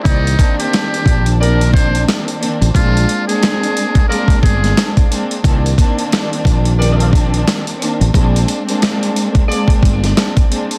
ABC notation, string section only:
X:1
M:4/4
L:1/16
Q:"Swing 16ths" 1/4=89
K:Cm
V:1 name="String section"
[E,B,Cd]2 [E,B,CD]6 [E,B,CD]6 [E,B,CD]2 | [A,B,CD]3 [A,B,CD]4- [A,B,CD] [A,B,CD]4 [A,B,CD]2 [A,B,CD]2 | [E,B,CD]2 [E,B,CD]6 [E,B,CD]6 [E,B,CD]2 | [A,B,CD]3 [A,B,CD]4- [A,B,CD] [A,B,CD]4 [A,B,CD]2 [A,B,CD]2 |]